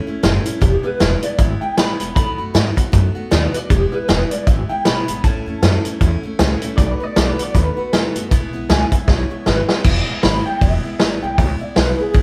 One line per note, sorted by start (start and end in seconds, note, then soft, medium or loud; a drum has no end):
0.07 0.22 A3 soft
0.07 0.23 C#4 medium
0.07 0.23 E4 medium
0.07 muted upright bass stroke medium
0.23 0.38 F#1 medium
0.23 0.46 A2 medium
0.23 0.46 E3 loud
0.23 0.46 A3 medium
0.23 0.45 C#4 medium
0.23 0.44 E4 loud
0.23 snare loud
0.23 closed hi-hat medium
0.45 0.62 A3 soft
0.45 0.62 C#4 medium
0.45 0.61 E4 medium
0.45 muted upright bass stroke medium
0.45 closed hi-hat medium
0.61 0.76 E1 medium
0.61 0.84 E2 medium
0.61 0.84 B2 medium
0.61 0.84 E3 medium
0.61 0.83 G#3 medium
0.61 0.83 B3 medium
0.61 0.82 E4 medium
0.61 0.84 G4 loud
0.61 kick loud
0.61 closed hi-hat medium
0.83 0.99 E3 soft
0.83 1.00 G#3 soft
0.83 1.00 B3 medium
0.83 1.00 E4 medium
0.83 1.22 B4 loud
0.83 muted upright bass stroke medium
1.00 1.15 E1 loud
1.00 1.23 E2 medium
1.00 1.23 B2 medium
1.00 1.23 E3 medium
1.00 1.23 G#3 medium
1.00 1.22 B3 medium
1.00 1.21 E4 medium
1.00 snare loud
1.00 closed hi-hat medium
1.22 1.37 E3 soft
1.22 1.38 G#3 soft
1.22 1.39 B3 soft
1.22 1.39 E4 medium
1.22 1.39 D5 medium
1.22 muted upright bass stroke medium
1.22 closed hi-hat medium
1.38 1.53 G#1 loud
1.38 1.61 E3 medium
1.38 1.62 G#3 medium
1.38 1.61 B3 medium
1.38 1.60 E4 medium
1.38 1.61 E5 medium
1.38 kick loud
1.38 closed hi-hat medium
1.61 1.77 E3 soft
1.61 1.77 G#3 medium
1.61 1.78 B3 soft
1.61 1.77 E4 medium
1.61 1.77 G5 medium
1.61 muted upright bass stroke medium
1.77 1.93 G#1 medium
1.77 2.00 E2 medium
1.77 2.00 B2 medium
1.77 2.00 E3 medium
1.77 2.00 G#3 medium
1.77 1.99 B3 medium
1.77 1.98 E4 medium
1.77 2.14 B5 loud
1.77 snare loud
1.77 closed hi-hat medium
1.99 2.11 E1 medium
1.99 2.16 E3 soft
1.99 2.16 G#3 medium
1.99 2.16 B3 medium
1.99 2.16 E4 medium
1.99 closed hi-hat medium
2.15 2.31 B1 medium
2.15 2.38 B2 medium
2.15 2.39 D#3 medium
2.15 2.39 A3 medium
2.15 2.38 B3 medium
2.15 2.37 F#4 medium
2.15 2.90 B5 loud
2.15 kick loud
2.15 closed hi-hat medium
2.38 2.49 F#2 medium
2.38 2.53 A3 soft
2.38 2.54 B3 soft
2.38 2.54 F#4 medium
2.54 2.69 G#2 medium
2.54 2.77 B2 medium
2.54 2.77 D#3 medium
2.54 2.77 A3 medium
2.54 2.76 B3 medium
2.54 2.75 F#4 medium
2.54 snare loud
2.54 closed hi-hat medium
2.76 2.92 A3 soft
2.76 2.93 B3 soft
2.76 2.93 F#4 medium
2.76 kick medium
2.76 closed hi-hat medium
2.92 3.08 F#2 medium
2.92 3.15 D#3 medium
2.92 3.16 A3 medium
2.92 3.15 B3 medium
2.92 3.14 F#4 medium
2.92 kick loud
2.92 closed hi-hat medium
3.15 3.31 A3 medium
3.15 3.31 B3 medium
3.15 3.31 F#4 medium
3.15 muted upright bass stroke medium
3.31 3.47 D#2 medium
3.31 3.54 B2 medium
3.31 3.54 D#3 medium
3.31 3.54 A3 medium
3.31 3.54 B3 medium
3.31 3.52 F#4 loud
3.31 3.44 D5 loud
3.31 snare loud
3.31 closed hi-hat medium
3.45 3.57 B4 medium
3.53 3.71 A3 soft
3.53 3.70 B3 soft
3.53 3.70 F#4 soft
3.53 3.69 D5 medium
3.53 muted upright bass stroke medium
3.53 closed hi-hat medium
3.70 3.85 E1 medium
3.70 3.93 E2 medium
3.70 3.93 B2 medium
3.70 3.93 E3 medium
3.70 3.92 G#3 medium
3.70 3.91 B3 medium
3.70 3.91 E4 medium
3.70 3.92 G4 medium
3.70 kick loud
3.70 closed hi-hat medium
3.92 4.08 E3 soft
3.92 4.08 G#3 soft
3.92 4.08 B3 medium
3.92 4.08 E4 medium
3.92 4.30 B4 medium
4.08 4.24 E1 medium
4.08 4.31 E2 medium
4.08 4.31 B2 medium
4.08 4.31 E3 medium
4.08 4.31 G#3 medium
4.08 4.30 B3 medium
4.08 4.30 E4 medium
4.08 snare loud
4.08 closed hi-hat medium
4.31 4.46 E3 soft
4.31 4.46 G#3 soft
4.31 4.47 B3 soft
4.31 4.47 E4 medium
4.31 4.46 D5 medium
4.31 muted upright bass stroke medium
4.31 closed hi-hat medium
4.47 4.62 G#1 loud
4.47 4.70 E3 medium
4.47 4.70 G#3 medium
4.47 4.69 B3 medium
4.47 4.68 E4 medium
4.47 4.69 E5 medium
4.47 kick loud
4.47 closed hi-hat medium
4.69 4.85 E3 soft
4.69 4.85 G#3 medium
4.69 4.86 B3 medium
4.69 4.86 E4 medium
4.69 4.85 G5 medium
4.69 muted upright bass stroke medium
4.85 5.00 G#1 medium
4.85 5.08 E2 medium
4.85 5.08 B2 medium
4.85 5.09 E3 medium
4.85 5.08 G#3 medium
4.85 5.07 B3 medium
4.85 5.06 E4 medium
4.85 5.23 B5 medium
4.85 snare loud
4.85 closed hi-hat medium
5.08 5.19 G#1 medium
5.08 5.23 E3 soft
5.08 5.24 G#3 soft
5.08 5.24 B3 medium
5.08 5.24 E4 medium
5.08 closed hi-hat medium
5.24 5.39 A1 medium
5.24 5.46 A2 medium
5.24 5.47 E3 medium
5.24 5.47 A3 medium
5.24 5.46 C#4 medium
5.24 5.45 E4 medium
5.24 5.99 A5 loud
5.24 kick loud
5.24 closed hi-hat medium
5.46 5.57 E2 medium
5.46 5.62 A3 soft
5.46 5.62 C#4 medium
5.46 5.62 E4 medium
5.62 5.77 F#2 loud
5.62 5.85 A2 medium
5.62 5.85 E3 medium
5.62 5.86 A3 medium
5.62 5.85 C#4 medium
5.62 5.84 E4 medium
5.62 snare loud
5.62 closed hi-hat medium
5.85 6.01 A3 soft
5.85 6.01 C#4 medium
5.85 6.01 E4 medium
5.85 muted upright bass stroke medium
5.85 closed hi-hat medium
6.01 6.16 E2 loud
6.01 6.23 E3 medium
6.01 6.24 A3 medium
6.01 6.23 C#4 medium
6.01 6.22 E4 medium
6.01 kick loud
6.01 closed hi-hat medium
6.23 6.39 A3 medium
6.23 6.40 C#4 medium
6.23 6.39 E4 medium
6.23 muted upright bass stroke medium
6.39 6.54 C#2 medium
6.39 6.62 A2 medium
6.39 6.62 E3 medium
6.39 6.62 A3 loud
6.39 6.62 C#4 loud
6.39 6.61 E4 loud
6.39 snare loud
6.39 closed hi-hat medium
6.62 6.77 A3 medium
6.62 6.79 C#4 medium
6.62 6.78 E4 medium
6.62 muted upright bass stroke medium
6.62 closed hi-hat medium
6.77 6.93 B1 loud
6.77 7.00 B2 medium
6.77 7.01 D#3 medium
6.77 7.01 A3 medium
6.77 7.00 B3 medium
6.77 6.99 F#4 medium
6.77 6.91 D5 loud
6.77 kick loud
6.77 closed hi-hat medium
6.91 7.04 B4 loud
7.00 7.16 A3 soft
7.00 7.16 B3 soft
7.00 7.16 F#4 medium
7.00 7.16 D5 loud
7.00 muted upright bass stroke medium
7.16 7.31 B1 medium
7.16 7.39 B2 medium
7.16 7.39 D#3 medium
7.16 7.39 A3 medium
7.16 7.38 B3 medium
7.16 7.37 F#4 medium
7.16 7.30 D5 medium
7.16 snare loud
7.16 closed hi-hat medium
7.31 7.42 B4 medium
7.38 7.54 A3 soft
7.38 7.54 B3 medium
7.38 7.55 F#4 medium
7.38 muted upright bass stroke medium
7.38 closed hi-hat medium
7.42 7.55 D5 medium
7.54 7.70 D#2 loud
7.54 7.77 D#3 medium
7.54 7.77 A3 medium
7.54 7.77 B3 medium
7.54 7.76 F#4 medium
7.54 8.30 B4 loud
7.54 kick loud
7.54 closed hi-hat medium
7.77 7.92 A3 soft
7.77 7.93 B3 medium
7.77 7.93 F#4 medium
7.77 muted upright bass stroke medium
7.93 8.08 D#2 medium
7.93 8.16 B2 medium
7.93 8.16 D#3 medium
7.93 8.16 A3 medium
7.93 8.15 B3 medium
7.93 8.14 F#4 medium
7.93 snare loud
7.93 closed hi-hat medium
8.15 8.26 F#2 medium
8.15 8.32 A3 medium
8.15 8.31 B3 medium
8.15 8.31 F#4 medium
8.15 closed hi-hat medium
8.31 8.46 E1 medium
8.31 8.54 E2 medium
8.31 8.54 B2 medium
8.31 8.54 E3 medium
8.31 8.53 G#3 medium
8.31 8.53 B3 medium
8.31 8.52 E4 medium
8.31 kick loud
8.31 closed hi-hat medium
8.53 8.64 B1 medium
8.53 8.69 E3 soft
8.53 8.69 G#3 medium
8.53 8.70 B3 medium
8.53 8.70 E4 medium
8.69 8.85 C#2 loud
8.69 8.92 E2 medium
8.69 8.92 B2 medium
8.69 8.93 E3 medium
8.69 8.92 G#3 medium
8.69 8.92 B3 medium
8.69 8.91 E4 medium
8.69 8.92 G#5 loud
8.69 snare loud
8.69 closed hi-hat medium
8.92 9.06 E3 soft
8.92 9.07 G#3 soft
8.92 9.08 B3 medium
8.92 9.08 E4 soft
8.92 9.08 E5 medium
8.92 kick medium
8.92 closed hi-hat medium
9.07 9.23 B1 medium
9.07 9.30 E3 medium
9.07 9.30 G#3 medium
9.07 9.30 B3 medium
9.07 9.29 E4 medium
9.07 9.45 C#5 medium
9.07 kick loud
9.07 snare medium
9.30 9.46 E3 soft
9.30 9.46 G#3 soft
9.30 9.46 B3 medium
9.30 9.46 E4 medium
9.30 muted upright bass stroke medium
9.46 9.62 G#1 medium
9.46 9.69 E2 medium
9.46 9.69 B2 medium
9.46 9.69 E3 medium
9.46 9.69 G#3 medium
9.46 9.68 B3 medium
9.46 9.67 E4 medium
9.46 9.69 B4 loud
9.46 snare medium
9.68 9.84 E3 soft
9.68 9.85 G#3 medium
9.68 9.85 B3 medium
9.68 9.85 E4 medium
9.68 snare loud
9.84 10.06 E1 loud
9.84 10.07 E2 medium
9.84 10.08 B2 loud
9.84 10.08 E3 medium
9.84 10.07 G#3 medium
9.84 10.06 B3 medium
9.84 10.05 E4 medium
9.84 kick loud
9.84 crash loud
10.06 10.21 E3 soft
10.06 10.23 G#3 medium
10.06 10.23 B3 medium
10.06 10.23 E4 medium
10.06 muted upright bass stroke medium
10.23 10.44 G#1 medium
10.23 10.45 B3 medium
10.23 10.44 E4 medium
10.23 10.45 B5 medium
10.23 snare loud
10.23 open hi-hat soft
10.45 10.61 E3 soft
10.45 10.61 G#3 soft
10.45 10.61 B3 soft
10.45 10.62 E4 medium
10.45 10.61 G5 medium
10.61 10.82 E1 loud
10.61 10.84 E2 medium
10.61 10.84 B2 medium
10.61 10.84 E3 medium
10.61 10.84 G#3 medium
10.61 10.83 B3 medium
10.61 10.82 E4 medium
10.61 11.09 E5 medium
10.61 kick loud
10.61 open hi-hat soft
10.83 10.98 E3 soft
10.83 10.99 G#3 soft
10.83 11.00 B3 medium
10.83 11.00 E4 medium
10.83 muted upright bass stroke medium
10.99 11.21 G#1 medium
10.99 11.22 E3 medium
10.99 11.23 G#3 medium
10.99 11.22 B3 medium
10.99 11.21 E4 medium
10.99 snare loud
10.99 open hi-hat soft
11.09 11.21 D5 medium
11.22 11.38 B1 medium
11.22 11.38 E3 soft
11.22 11.38 G#3 medium
11.22 11.38 B3 medium
11.22 11.38 E4 medium
11.22 11.38 G5 medium
11.38 11.59 C#2 loud
11.38 11.61 E2 medium
11.38 11.61 B2 medium
11.38 11.61 E3 medium
11.38 11.60 G#3 medium
11.38 11.60 B3 medium
11.38 11.59 E4 medium
11.38 11.61 E5 medium
11.38 kick loud
11.38 open hi-hat medium
11.60 11.75 E3 soft
11.60 11.75 G#3 soft
11.60 11.76 B3 soft
11.60 11.76 E4 medium
11.60 11.76 D5 medium
11.60 muted upright bass stroke medium
11.76 11.98 B1 medium
11.76 11.99 E3 medium
11.76 11.99 G#3 medium
11.76 11.98 B3 medium
11.76 11.97 E4 medium
11.76 12.00 B4 medium
11.76 snare loud
11.76 open hi-hat medium
11.98 12.13 E3 soft
11.98 12.14 G#3 soft
11.98 12.14 B3 soft
11.98 12.14 E4 medium
11.98 12.22 G#4 medium
11.98 muted upright bass stroke medium
12.14 12.22 G#1 loud
12.14 12.22 E2 medium
12.14 12.22 B2 medium
12.14 12.22 E3 medium
12.14 12.22 G#3 medium
12.14 12.22 B3 medium
12.14 12.22 E4 medium
12.14 kick loud
12.14 open hi-hat soft